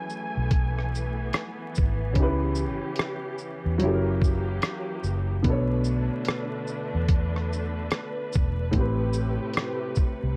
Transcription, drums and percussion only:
0.10 shaker
0.51 kick, closed hi-hat
0.79 cross-stick
0.95 shaker
1.33 cross-stick, closed hi-hat
1.75 kick, shaker
2.15 kick, closed hi-hat
2.55 shaker
2.96 cross-stick, closed hi-hat
3.38 shaker
3.80 closed hi-hat
4.22 kick, shaker
4.62 cross-stick, closed hi-hat
5.04 shaker
5.44 kick, closed hi-hat
5.84 shaker
6.25 cross-stick, closed hi-hat
6.67 shaker
7.08 kick, closed hi-hat
7.36 cross-stick
7.53 shaker
7.91 cross-stick, closed hi-hat
8.33 kick, shaker
8.73 kick, closed hi-hat
9.13 shaker
9.54 cross-stick, closed hi-hat
9.95 kick, shaker

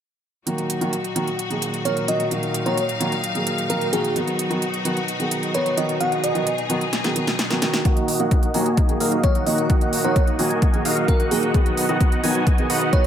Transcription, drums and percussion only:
0.47 closed hi-hat
0.58 closed hi-hat
0.70 closed hi-hat
0.81 closed hi-hat
0.93 closed hi-hat
1.04 closed hi-hat
1.16 closed hi-hat
1.27 closed hi-hat
1.39 closed hi-hat
1.51 closed hi-hat
1.62 closed hi-hat
1.74 closed hi-hat
1.85 closed hi-hat
1.97 closed hi-hat
2.08 closed hi-hat
2.20 closed hi-hat
2.31 closed hi-hat
2.43 closed hi-hat
2.54 closed hi-hat
2.66 closed hi-hat
2.78 closed hi-hat
2.89 closed hi-hat
3.01 closed hi-hat
3.12 closed hi-hat
3.24 closed hi-hat
3.35 closed hi-hat
3.47 closed hi-hat
3.58 closed hi-hat
3.70 closed hi-hat
3.81 closed hi-hat
3.93 closed hi-hat
4.04 closed hi-hat
4.16 closed hi-hat
4.28 closed hi-hat
4.39 closed hi-hat
4.51 closed hi-hat
4.62 closed hi-hat
4.74 closed hi-hat
4.85 closed hi-hat
4.97 closed hi-hat
5.08 closed hi-hat
5.20 closed hi-hat
5.31 closed hi-hat
5.43 closed hi-hat
5.54 closed hi-hat
5.66 closed hi-hat
5.77 closed hi-hat
5.89 closed hi-hat
6.01 closed hi-hat
6.12 closed hi-hat
6.24 closed hi-hat
6.35 closed hi-hat
6.47 closed hi-hat
6.58 closed hi-hat
6.70 closed hi-hat
6.81 closed hi-hat
6.93 snare, closed hi-hat
7.04 snare, closed hi-hat
7.16 closed hi-hat
7.27 snare, closed hi-hat
7.39 snare, closed hi-hat
7.50 snare, closed hi-hat
7.62 snare, closed hi-hat
7.74 snare, closed hi-hat
7.85 kick, closed hi-hat
7.97 closed hi-hat
8.08 open hi-hat
8.20 closed hi-hat
8.31 kick, closed hi-hat
8.43 closed hi-hat
8.54 open hi-hat
8.66 closed hi-hat
8.77 kick, closed hi-hat
8.89 closed hi-hat
9.00 open hi-hat
9.12 closed hi-hat
9.24 kick, closed hi-hat
9.35 closed hi-hat
9.47 open hi-hat
9.58 closed hi-hat
9.70 kick, closed hi-hat
9.81 closed hi-hat
9.93 open hi-hat
10.04 closed hi-hat
10.16 kick, closed hi-hat
10.27 closed hi-hat
10.39 open hi-hat
10.51 closed hi-hat
10.62 kick, closed hi-hat
10.74 closed hi-hat
10.85 open hi-hat
11.08 kick, closed hi-hat
11.20 closed hi-hat
11.31 open hi-hat
11.43 closed hi-hat
11.54 kick, closed hi-hat
11.66 closed hi-hat
11.77 open hi-hat
11.89 closed hi-hat
12.01 kick, closed hi-hat
12.12 closed hi-hat
12.24 open hi-hat
12.35 closed hi-hat
12.47 kick, closed hi-hat
12.58 closed hi-hat
12.70 open hi-hat
12.81 closed hi-hat
12.93 kick, closed hi-hat

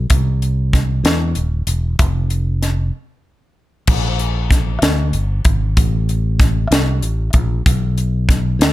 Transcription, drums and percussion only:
0.10 kick, closed hi-hat
0.42 closed hi-hat
0.73 kick, snare, closed hi-hat
1.05 snare, closed hi-hat
1.35 closed hi-hat
1.67 closed hi-hat
1.99 kick, closed hi-hat
2.30 closed hi-hat
2.62 snare, closed hi-hat
3.87 kick, crash
4.19 closed hi-hat
4.51 kick, snare, closed hi-hat
4.82 snare, closed hi-hat
5.13 closed hi-hat
5.45 kick, closed hi-hat
5.77 kick, closed hi-hat
6.09 closed hi-hat
6.40 kick, snare, closed hi-hat
6.72 snare, closed hi-hat
7.03 closed hi-hat
7.33 kick, closed hi-hat
7.66 kick, closed hi-hat
7.98 closed hi-hat
8.29 kick, snare, closed hi-hat
8.61 snare, closed hi-hat

